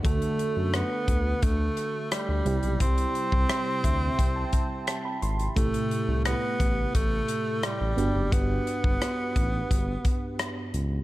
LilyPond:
<<
  \new Staff \with { instrumentName = "FM electric piano" } { \time 4/4 \key d \mixolydian \tempo 4 = 87 << { d4. r2 c8~ | c4 r8 e''8 g''16 a''16 g''8 a''16 b''16 c'''8 | a,4. r2 g,8~ | g,4 r2. | } \\ { <a d' fis' a'>2.~ <a d' fis' a'>8 <g c' e' g'>8~ | <g c' e' g'>2.~ <g c' e' g'>8 r8 | <c a e' g'>2.~ <c a e' g'>8 <b d' fis' g'>8~ | <b d' fis' g'>2.~ <b d' fis' g'>8 r8 | } >> }
  \new Staff \with { instrumentName = "Tenor saxophone" } { \time 4/4 \key d \mixolydian a4 b4 a4 g4 | c'2.~ c'8 r8 | a4 b4 a4 g4 | b2.~ b8 r8 | }
  \new Staff \with { instrumentName = "Analog synth bass" } { \clef bass \time 4/4 \key d \mixolydian d,16 r8 fis,8 r16 d,8 d,8 r8. d,16 c,16 b,,16 | c,8 r16 c,16 r8 d,8 c,8 r4 gis,,8 | a,,16 r8 c,8 r16 a,,8 a,,8 r8. a,,16 g,,16 fis,,16 | g,,8 r16 g,,16 r8 a,,8 g,,8 r4 cis,8 | }
  \new DrumStaff \with { instrumentName = "Drums" } \drummode { \time 4/4 <hh bd>16 hh16 hh8 <hh ss>8 <hh bd>8 <hh bd>8 hh8 <hh ss>8 hh16 hh16 | <hh bd>16 hh16 hh16 bd16 <hh ss>8 <hh bd>8 <hh bd>8 <hh bd>8 <hh ss>8 hh16 hh16 | <hh bd>16 hh16 hh8 <hh ss>8 <hh bd>8 <hh bd>8 hh8 <hh ss>8 hh8 | <hh bd>8 hh16 bd16 <hh ss>8 <hh bd>8 <hh bd>8 <hh bd>8 <hh ss>8 hh8 | }
>>